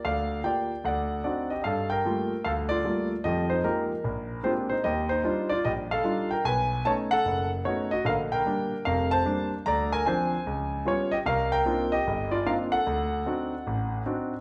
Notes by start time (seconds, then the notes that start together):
0.05 D2 D5 F5
0.44 A#3 F4 G4 D5 G5
0.84 D2 D5 F#5
1.24 C4 D4 D#4 F#4 D5
1.50 G4 D#5
1.62 G2 D#5 F5
1.66 A4
1.90 A#4 G5
2.05 G3 A3 A#3 F4
2.44 D2 A4 F5
2.69 F4 D5
2.84 G3 A3 A#3 F4
3.24 F2 F3 G4 D#5
3.50 D#4 C5
3.64 G#3 A#3 D#4 F4 G4 A#4
4.04 A#1
4.43 G#3 A#3 C4 D4 F4 G4 C5
4.69 D#4 C5
4.84 D#2 G4 D#5
5.09 D#4 C5
5.24 G3 D4 D#4 F4
5.49 F4 D5
5.65 A#1 G4 D#5
5.91 A4 F5
6.04 G3 D4 D#4 F4
6.31 A#4 G5
6.45 B1 B4 G#5
6.85 A3 B3 C#4 D#4 C#5 A5
7.11 A4 F#5
7.25 F#1
7.65 A3 B3 C#4 D#4 F#4 C#5
7.91 F#4 D#5
8.05 A#1 D3 A#4 F5
8.32 A#4 G5
8.46 G3 A#3 D4
8.85 F1 F2 A#4 F5
9.11 C5 A5
9.25 G3 A#3 D4
9.66 D2 D5 A#5
9.92 A#4 G#5
10.06 F3 C4 D4 C5 G#5
10.47 C#2
10.85 G3 B3 C#4 F4 C#5
11.11 G4 D#5
11.26 C2 A#4 F5
11.52 A#4 G5
11.65 A#3 C4 D4 D#4 F4
11.92 G4 D#5
12.07 G1
12.31 F4 D5
12.46 A#3 C4 D4 D#4 F4 A#4 F5
12.72 A4 F#5
12.86 D2
13.26 C4 D4 D#4 F#4
13.67 A1
14.06 C4 D4 D#4 F#4